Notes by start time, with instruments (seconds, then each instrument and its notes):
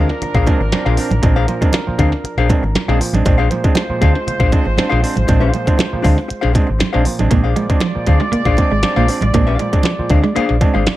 Already playing: horn section F3 D4 A#4, clav G#3 C4 D4, hollow-body jazz guitar D4
0.09 muted hollow-body jazz guitar stroke, snare
0.22 muted hollow-body jazz guitar stroke, muted fingered electric bass stroke, closed hi-hat, low conga
0.34 fingered electric bass A#1, hollow-body jazz guitar D4 G#4 C5 F5, kick, snare
0.47 clav G#3 C4 D4, muted hollow-body jazz guitar stroke, kick, closed hi-hat, muted conga, low conga
0.60 fingered electric bass G#1, muted hollow-body jazz guitar stroke
0.72 clav C4 D4, muted hollow-body jazz guitar stroke, snare, closed hi-hat, high conga
0.86 fingered electric bass A#1, clav A#2 F3, hollow-body jazz guitar D4 G#4 C5 F5, snare
0.97 clav C4 D4, muted hollow-body jazz guitar stroke, open hi-hat
1.11 fingered electric bass A1, muted hollow-body jazz guitar stroke, closed hi-hat, high conga
1.22 fingered electric bass A#1, clav G#3 C4 D4, muted hollow-body jazz guitar stroke, kick, closed hi-hat, muted conga
1.36 hollow-body jazz guitar D4 G#4 C5 F5
1.47 clav A#2 F3, muted hollow-body jazz guitar stroke, closed hi-hat, muted conga
1.61 clav G#3 C4 D4, muted hollow-body jazz guitar stroke, muted fingered electric bass stroke, kick, closed hi-hat
1.73 clav C4 D4, muted hollow-body jazz guitar stroke, snare, closed hi-hat, high conga
1.87 clav A#2 F3, muted fingered electric bass stroke
1.98 fingered electric bass D2, clav G#3 C4 D4, hollow-body jazz guitar D4 G#4 C5 F5, kick, closed hi-hat, muted conga
2.12 muted hollow-body jazz guitar stroke, snare
2.24 muted fingered electric bass stroke, muted hollow-body jazz guitar stroke, closed hi-hat
2.37 fingered electric bass A#1, hollow-body jazz guitar D4 G#4 C5 F5, snare
2.49 clav G#3 C4 D4, muted hollow-body jazz guitar stroke, kick, closed hi-hat, muted conga, low conga
2.63 fingered electric bass G#1, muted hollow-body jazz guitar stroke
2.75 muted fingered electric bass stroke, muted hollow-body jazz guitar stroke, snare, closed hi-hat, high conga
2.88 fingered electric bass A#1, clav G#3 C4 D4, hollow-body jazz guitar D4 G#4 C5 F5, snare
3.00 clav A#2 F3, muted hollow-body jazz guitar stroke, open hi-hat
3.13 fingered electric bass A1, clav G#3 C4 D4, muted hollow-body jazz guitar stroke, closed hi-hat, high conga
3.25 fingered electric bass A#1, horn section G#3 F4 C5, clav G#3 C4 D4, muted hollow-body jazz guitar stroke, kick, closed hi-hat, muted conga
3.38 hollow-body jazz guitar D4 G#4 C5 F5
3.50 clav A#2 F3, muted hollow-body jazz guitar stroke, closed hi-hat, muted conga
3.64 clav G#3 C4 D4, muted fingered electric bass stroke, muted hollow-body jazz guitar stroke, kick, closed hi-hat
3.75 clav C4 D4, muted hollow-body jazz guitar stroke, snare, closed hi-hat, high conga
3.90 clav A#2 F3, muted fingered electric bass stroke
4.01 fingered electric bass D2, clav G#3 C4 D4, hollow-body jazz guitar D4 G#4 C5 F5, kick, closed hi-hat, muted conga
4.14 muted hollow-body jazz guitar stroke, snare
4.27 muted hollow-body jazz guitar stroke, muted fingered electric bass stroke, closed hi-hat, low conga
4.40 fingered electric bass A#1, hollow-body jazz guitar D4 G#4 C5 F5, kick, snare
4.52 clav G#3 C4 D4, muted hollow-body jazz guitar stroke, kick, closed hi-hat, muted conga, low conga
4.64 fingered electric bass G#1, muted hollow-body jazz guitar stroke
4.77 clav C4 D4, muted hollow-body jazz guitar stroke, snare, closed hi-hat, high conga
4.89 fingered electric bass A#1, clav A#2 F3, hollow-body jazz guitar D4 G#4 C5 F5, snare
5.02 clav C4 D4, muted hollow-body jazz guitar stroke, open hi-hat
5.15 fingered electric bass A1, muted hollow-body jazz guitar stroke, closed hi-hat, high conga
5.27 fingered electric bass A#1, clav G#3 C4 D4, muted hollow-body jazz guitar stroke, kick, closed hi-hat, muted conga
5.40 hollow-body jazz guitar D4 G#4 C5 F5
5.52 clav A#2 F3, muted hollow-body jazz guitar stroke, closed hi-hat, muted conga
5.66 clav G#3 C4 D4, muted hollow-body jazz guitar stroke, muted fingered electric bass stroke, kick, closed hi-hat
5.77 clav C4 D4, muted hollow-body jazz guitar stroke, snare, closed hi-hat, high conga
5.93 clav A#2 F3, muted fingered electric bass stroke
6.02 fingered electric bass D2, clav G#3 C4 D4, hollow-body jazz guitar D4 G#4 C5 F5, kick, open hi-hat, muted conga
6.17 muted hollow-body jazz guitar stroke, snare
6.28 muted hollow-body jazz guitar stroke, muted fingered electric bass stroke, closed hi-hat
6.41 fingered electric bass A#1, hollow-body jazz guitar D4 G#4 C5 F5, snare
6.53 clav G#3 C4 D4, muted hollow-body jazz guitar stroke, kick, closed hi-hat, low conga
6.67 fingered electric bass G#1, muted hollow-body jazz guitar stroke
6.79 muted hollow-body jazz guitar stroke, muted fingered electric bass stroke, snare, closed hi-hat, high conga
6.93 fingered electric bass A#1, clav G#3 C4 D4, hollow-body jazz guitar D4 G#4 C5 F5, snare
7.05 clav A#2 F3, muted hollow-body jazz guitar stroke, open hi-hat
7.19 fingered electric bass A1, clav G#3 C4 D4, muted hollow-body jazz guitar stroke, closed hi-hat, high conga
7.30 fingered electric bass A#1, horn section G#3 F4 D5, clav G#3 C4 D4, clean electric guitar A#3, muted hollow-body jazz guitar stroke, kick, closed hi-hat, muted conga
7.44 hollow-body jazz guitar D4 G#4 C5 F5, muted clean electric guitar stroke
7.56 clav A#2 F3, clean electric guitar G#3, muted hollow-body jazz guitar stroke, closed hi-hat, muted conga
7.69 clav G#3 C4 D4, muted fingered electric bass stroke, muted hollow-body jazz guitar stroke, kick, closed hi-hat
7.80 clean electric guitar F3, muted hollow-body jazz guitar stroke, snare, closed hi-hat, high conga
7.95 clav A#2 F3, muted fingered electric bass stroke
8.07 fingered electric bass D2, clav G#3 C4 D4, hollow-body jazz guitar D4 G#4 C5 F5, muted clean electric guitar stroke, kick, closed hi-hat, muted conga
8.20 clean electric guitar G#3, muted hollow-body jazz guitar stroke, snare
8.32 clean electric guitar A#3, muted hollow-body jazz guitar stroke, muted fingered electric bass stroke, closed hi-hat, low conga
8.45 fingered electric bass A#1, hollow-body jazz guitar D4 G#4 C5 F5, muted clean electric guitar stroke, kick, snare
8.57 clav G#3 C4 D4, muted hollow-body jazz guitar stroke, kick, closed hi-hat, muted conga, low conga
8.71 fingered electric bass G#1, clean electric guitar G#3, muted hollow-body jazz guitar stroke
8.83 clav C4 D4, muted hollow-body jazz guitar stroke, muted fingered electric bass stroke, snare, closed hi-hat, high conga
8.96 fingered electric bass A#1, clav A#2 F3, clean electric guitar A#3, hollow-body jazz guitar D4 G#4 C5 F5, snare
9.08 clav C4 D4, muted hollow-body jazz guitar stroke, muted clean electric guitar stroke, open hi-hat
9.21 fingered electric bass A1, clean electric guitar G#3, muted hollow-body jazz guitar stroke, closed hi-hat, high conga
9.33 fingered electric bass A#1, clav G#3 C4 D4, clean electric guitar A#3, muted hollow-body jazz guitar stroke, kick, closed hi-hat, muted conga
9.47 hollow-body jazz guitar D4 G#4 C5 F5, muted clean electric guitar stroke
9.59 clav A#2 F3, clean electric guitar G#3, muted hollow-body jazz guitar stroke, closed hi-hat, muted conga
9.72 clav G#3 C4 D4, muted hollow-body jazz guitar stroke, muted fingered electric bass stroke, kick, closed hi-hat
9.83 clean electric guitar F3, clav C4 D4, muted hollow-body jazz guitar stroke, snare, closed hi-hat, high conga
9.99 clav A#2 F3, muted fingered electric bass stroke
10.10 fingered electric bass D2, clav G#3 C4 D4, hollow-body jazz guitar D4 G#4 C5 F5, muted clean electric guitar stroke, kick, closed hi-hat, muted conga
10.23 clean electric guitar G#3, muted hollow-body jazz guitar stroke, snare
10.35 clean electric guitar A#3, hollow-body jazz guitar D4 G#4 C5 F5, muted fingered electric bass stroke, closed hi-hat
10.49 fingered electric bass A#1, muted clean electric guitar stroke, snare
10.61 clav G#3 C4 D4, muted hollow-body jazz guitar stroke, kick, closed hi-hat, muted conga, low conga
10.74 fingered electric bass G#1, clean electric guitar G#3, hollow-body jazz guitar D4 G#4 C5 F5
10.86 muted hollow-body jazz guitar stroke, muted fingered electric bass stroke, snare, closed hi-hat, high conga